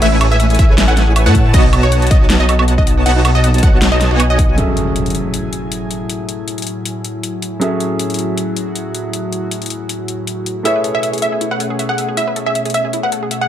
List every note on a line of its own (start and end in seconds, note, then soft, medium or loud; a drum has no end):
0.02 0.57 A1 loud
0.02 0.57 A3 medium
0.02 0.06 E4 medium
0.02 0.57 E4 medium
0.02 0.57 B4 medium
0.02 0.57 C#5 medium
0.02 0.28 E5 loud
0.02 0.57 G#5 loud
0.02 closed hi-hat medium
0.02 crash medium
0.12 0.16 E4 loud
0.21 0.25 A4 medium
0.21 closed hi-hat medium
0.21 high woodblock medium
0.31 0.35 G#4 medium
0.31 0.56 E5 loud
0.40 0.44 E5 loud
0.40 closed hi-hat medium
0.50 0.52 G#4 medium
0.50 closed hi-hat soft
0.55 closed hi-hat medium
0.59 1.28 A1 loud
0.59 1.24 A3 medium
0.59 1.24 E4 medium
0.59 1.24 B4 medium
0.59 1.24 C#5 medium
0.59 0.63 E5 medium
0.59 0.84 E5 medium
0.59 1.24 G#5 medium
0.59 kick loud
0.59 closed hi-hat medium
0.69 0.73 G#4 medium
0.78 0.82 E4 medium
0.78 snare loud
0.78 closed hi-hat medium
0.88 0.92 E4 loud
0.88 1.21 F#5 medium
0.97 1.01 A4 medium
0.97 snare medium
0.97 closed hi-hat medium
1.07 1.11 G#4 medium
1.16 1.20 E5 loud
1.16 closed hi-hat medium
1.16 high woodblock medium
1.26 1.52 A2 loud
1.26 1.52 A3 medium
1.26 1.52 E4 medium
1.26 1.28 G#4 medium
1.26 1.52 B4 medium
1.26 1.52 C#5 medium
1.26 1.51 F#5 loud
1.26 1.52 A5 loud
1.26 1.52 A5 medium
1.35 1.39 E5 medium
1.35 kick medium
1.35 closed hi-hat medium
1.46 1.49 G#4 medium
1.53 2.09 B1 loud
1.53 2.09 B3 loud
1.53 1.58 D#4 medium
1.53 2.09 F#4 medium
1.53 2.09 C#5 medium
1.53 1.79 D#5 loud
1.53 2.09 D#5 medium
1.53 2.09 A5 loud
1.53 kick loud
1.53 closed hi-hat medium
1.53 crash soft
1.64 1.68 D#4 loud
1.73 1.77 A4 medium
1.73 closed hi-hat medium
1.73 high woodblock medium
1.83 1.87 F#4 medium
1.83 2.08 C#5 loud
1.92 1.96 F#5 loud
1.92 closed hi-hat medium
2.02 2.05 F#4 medium
2.02 closed hi-hat soft
2.07 closed hi-hat medium
2.11 3.04 B1 loud
2.11 3.04 B3 medium
2.11 3.04 F#4 medium
2.11 3.04 C#5 medium
2.11 2.36 D#5 medium
2.11 3.04 D#5 medium
2.11 2.15 F#5 medium
2.11 3.04 A5 medium
2.11 kick loud
2.11 closed hi-hat medium
2.21 2.25 F#4 medium
2.30 2.34 D#4 medium
2.30 snare loud
2.30 closed hi-hat medium
2.40 2.44 D#4 loud
2.40 2.73 D#5 medium
2.49 2.53 A4 medium
2.49 closed hi-hat medium
2.49 high woodblock medium
2.59 2.63 F#4 medium
2.59 high woodblock medium
2.68 2.72 F#5 loud
2.68 closed hi-hat medium
2.78 2.80 F#4 medium
2.78 3.03 D#5 medium
2.78 kick medium
2.87 2.91 F#5 medium
2.87 closed hi-hat medium
2.97 3.01 F#4 medium
3.06 3.61 B1 loud
3.06 3.61 B3 medium
3.06 3.10 D#4 medium
3.06 3.61 F#4 medium
3.06 3.61 C#5 medium
3.06 3.61 D#5 medium
3.06 3.31 F#5 loud
3.06 3.61 A5 loud
3.06 closed hi-hat medium
3.06 crash soft
3.16 3.20 D#4 loud
3.25 3.29 A4 medium
3.25 closed hi-hat medium
3.25 high woodblock medium
3.35 3.39 F#4 medium
3.35 3.60 D#5 loud
3.44 3.48 F#5 loud
3.44 closed hi-hat medium
3.54 3.57 F#4 medium
3.54 closed hi-hat medium
3.58 closed hi-hat medium
3.63 4.09 B1 loud
3.63 4.09 B3 medium
3.63 4.09 F#4 medium
3.63 4.09 C#5 medium
3.63 4.09 D#5 medium
3.63 3.88 F#5 medium
3.63 3.67 F#5 medium
3.63 4.09 A5 medium
3.63 kick loud
3.63 closed hi-hat medium
3.73 3.77 F#4 medium
3.82 3.86 D#4 medium
3.82 snare loud
3.82 closed hi-hat medium
3.92 3.96 D#4 loud
3.92 4.25 D#5 medium
4.01 4.05 A4 medium
4.01 snare medium
4.01 closed hi-hat medium
4.11 4.56 B1 loud
4.11 4.56 B3 loud
4.11 4.56 F#4 medium
4.11 4.15 F#4 medium
4.11 4.56 C#5 medium
4.11 4.56 D#5 medium
4.11 4.56 G#5 loud
4.20 4.24 F#5 loud
4.20 closed hi-hat medium
4.20 high woodblock medium
4.30 4.32 F#4 medium
4.30 4.55 D#5 loud
4.39 4.43 F#5 medium
4.39 kick medium
4.39 closed hi-hat medium
4.49 4.53 F#4 medium
4.56 10.61 A2 medium
4.56 7.58 F#3 medium
4.56 10.61 F#3 medium
4.56 7.59 C#4 medium
4.56 10.61 E4 medium
4.56 7.60 G#4 medium
4.56 7.60 A4 medium
4.56 7.60 E5 medium
4.56 7.59 G#5 medium
4.56 closed hi-hat medium
4.56 impact medium
4.77 closed hi-hat medium
4.96 closed hi-hat medium
5.06 closed hi-hat soft
5.10 closed hi-hat medium
5.15 closed hi-hat medium
5.34 closed hi-hat medium
5.53 closed hi-hat medium
5.72 closed hi-hat medium
5.91 closed hi-hat medium
6.10 closed hi-hat medium
6.29 closed hi-hat medium
6.48 closed hi-hat medium
6.58 closed hi-hat soft
6.62 closed hi-hat medium
6.67 closed hi-hat medium
6.86 closed hi-hat medium
7.04 closed hi-hat medium
7.24 closed hi-hat medium
7.42 closed hi-hat medium
7.60 10.62 F#3 medium
7.60 10.63 C#4 medium
7.60 10.62 F#4 medium
7.60 10.63 G#4 medium
7.60 10.64 A4 medium
7.60 closed hi-hat medium
7.64 10.64 E5 medium
7.80 closed hi-hat medium
7.99 closed hi-hat medium
8.10 closed hi-hat soft
8.14 closed hi-hat medium
8.19 closed hi-hat medium
8.38 closed hi-hat medium
8.56 closed hi-hat medium
8.75 closed hi-hat medium
8.95 closed hi-hat medium
9.13 closed hi-hat medium
9.32 closed hi-hat medium
9.51 closed hi-hat medium
9.62 closed hi-hat soft
9.66 closed hi-hat medium
9.70 closed hi-hat medium
9.89 closed hi-hat medium
10.08 closed hi-hat medium
10.27 closed hi-hat medium
10.46 closed hi-hat medium
10.63 13.48 B2 medium
10.63 13.48 A3 medium
10.63 13.48 C#4 medium
10.63 13.48 E4 medium
10.63 10.70 E4 medium
10.63 13.48 G#4 medium
10.63 13.48 B4 medium
10.63 13.48 C#5 medium
10.63 10.91 E5 medium
10.63 closed hi-hat medium
10.76 10.79 B4 medium
10.84 10.89 A4 medium
10.84 closed hi-hat medium
10.95 10.98 G#4 medium
10.95 11.19 E5 medium
11.03 11.07 E5 loud
11.03 closed hi-hat medium
11.13 11.16 G#4 medium
11.13 closed hi-hat soft
11.18 closed hi-hat medium
11.22 11.26 E5 medium
11.22 11.48 E5 medium
11.22 closed hi-hat medium
11.32 11.36 G#4 medium
11.41 11.45 E4 medium
11.41 closed hi-hat medium
11.51 11.55 B4 medium
11.51 11.84 F#5 medium
11.60 11.64 A4 medium
11.60 closed hi-hat medium
11.70 11.74 G#4 medium
11.79 11.83 E5 loud
11.79 closed hi-hat medium
11.89 11.92 G#4 medium
11.89 12.14 F#5 medium
11.98 12.02 E5 medium
11.98 closed hi-hat medium
12.08 12.12 G#4 medium
12.17 12.21 E4 medium
12.17 12.43 E5 medium
12.17 closed hi-hat medium
12.27 12.31 B4 medium
12.36 12.40 A4 medium
12.36 closed hi-hat medium
12.46 12.50 G#4 medium
12.46 12.71 E5 medium
12.55 12.60 E5 loud
12.55 closed hi-hat medium
12.65 12.68 G#4 medium
12.65 closed hi-hat soft
12.70 closed hi-hat medium
12.74 12.78 E5 medium
12.74 13.00 E5 medium
12.74 closed hi-hat medium
12.85 12.88 G#4 medium
12.93 12.98 E4 medium
12.93 closed hi-hat medium
13.03 13.07 B4 medium
13.03 13.36 F#5 medium
13.12 13.16 A4 medium
13.12 closed hi-hat medium
13.23 13.26 G#4 medium
13.31 13.36 E5 loud
13.31 closed hi-hat medium
13.41 13.44 G#4 medium
13.41 13.48 F#5 loud